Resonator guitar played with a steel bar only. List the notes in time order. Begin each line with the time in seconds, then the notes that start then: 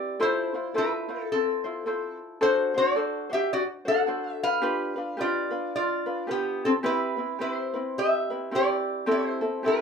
Already playing: G4 D5
0.22 E4 C5
0.78 E4 B4
1.32 C4 A4
2.43 F#4 C5
2.78 F#4 D5
3.33 G4 E5
3.53 F#4 D5
3.88 A4 F#5
4.32 E5
4.43 B4 F5
5.21 F4 D5
5.76 F4 D5
6.31 B3 G4
6.65 C4 A4
6.86 E4 B4
7.41 E4 B4
7.52 C5
7.98 G4 E5
8.55 G4 D5
9.11 E4 C5
9.66 E4 B4